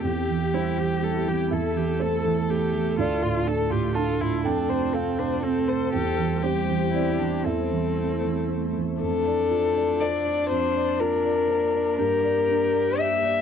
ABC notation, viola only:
X:1
M:3/4
L:1/8
Q:1/4=121
K:F
V:1 name="Viola"
G2 E G A G | A G A2 G2 | F2 A G F E | D2 C D C A- |
A2 G2 E D | C4- C z | D6- | D6 |
G6 |]